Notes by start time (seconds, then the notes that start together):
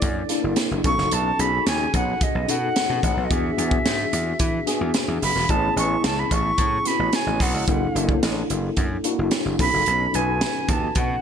Already playing: A#3 D4 E4 A4 D5
0.02 F#2, kick, closed hi-hat
0.29 A#3 D4 E4 A#4, snare, closed hi-hat
0.44 F#1
0.56 snare, closed hi-hat
0.71 F#1
0.84 B1 C#4 D#4 F#4 A4 C#6, kick, closed hi-hat
0.98 F#1, snare
1.11 B1 A5, closed hi-hat
1.39 B1 C#4 D#4 F#4 G#4 B5, closed hi-hat
1.66 D#2 G#5, snare, closed hi-hat
1.94 B1 F#5, kick, closed hi-hat
2.21 D#5, kick, closed hi-hat
2.35 B1
2.48 B2 C#4 D#4 F#4 A4 F#5, closed hi-hat
2.76 snare, closed hi-hat
2.90 B2
3.03 A1 F#5, kick, closed hi-hat
3.17 B1
3.25 D#5
3.30 E2 B3 D4 F#4 G#4 E5, kick, closed hi-hat
3.57 E2 B3 D4 F#4 G#4, closed hi-hat
3.71 kick
3.85 G#2, snare, closed hi-hat
4.13 E2, closed hi-hat
4.39 E3, kick, closed hi-hat
4.66 B3 D4 F#4 G#4, snare, closed hi-hat
4.81 E2
4.94 snare, closed hi-hat
5.08 E2
5.22 F#1 B5, snare, open hi-hat
5.35 E1, snare
5.49 A1 B3 C#4 E4 G#4 A5, kick, closed hi-hat
5.76 A1 B3 C#4 E4 G#4 C#6, closed hi-hat
6.04 C#2 A5, snare, closed hi-hat
6.19 B5
6.31 A1 C#6, kick, closed hi-hat
6.58 A2, kick, closed hi-hat
6.85 B3 C#4 E4 F#4 B5, snare, closed hi-hat
6.99 A1
7.13 G#5, snare, closed hi-hat
7.27 A1
7.40 B1 F#5, kick, snare, open hi-hat
7.54 C#2
7.67 F#1 A#3 D4 E4 A4 F#5, kick, closed hi-hat
7.95 F#1 A#3 D4 E4 A4, closed hi-hat
8.09 kick
8.23 A1, snare, closed hi-hat
8.50 F#1, closed hi-hat
8.77 F#2, kick, closed hi-hat
9.04 A#3 D4 E4 F#4, closed hi-hat
9.19 F#1
9.31 snare, closed hi-hat
9.45 F#1
9.59 B1 C#4 D#4 F#4 A4 B5, kick, snare, open hi-hat
9.73 F#1
9.86 B1, closed hi-hat
10.14 B1 C#4 D#4 F#4 B4 G#5, closed hi-hat
10.41 snare, closed hi-hat
10.68 D#2 A5, kick, closed hi-hat
10.95 B2 F#5, kick, closed hi-hat